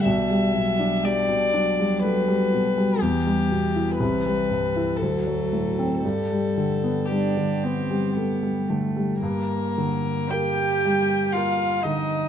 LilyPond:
<<
  \new Staff \with { instrumentName = "Violin" } { \time 3/4 \key g \major \tempo 4 = 59 e''4 d''4 b'4 | g'4 b'4 a'4 | a'4 g'4. r8 | \key g \minor bes'4 g''4 f''8 ees''8 | }
  \new Staff \with { instrumentName = "Cello" } { \clef bass \time 3/4 \key g \major g8 fis8 g8 fis4. | e4 e4 fis4 | g4 d'8 c'8 b8 a8 | \key g \minor bes4 g'4 f'8 ees'8 | }
  \new Staff \with { instrumentName = "Grand piano" } { \clef bass \time 3/4 \key g \major b,,16 g16 b,16 d'16 g16 b,16 d'16 g16 a16 g16 b,16 g16 | e,16 g16 b,16 e'16 c,16 g16 g,16 e'16 d,16 fis16 a,16 c'16 | g,16 g16 d16 b16 g16 d16 b16 g16 a16 g16 d16 g16 | \key g \minor g,8 d8 <bes bes'>8 g8 <bes bes'>8 d8 | }
>>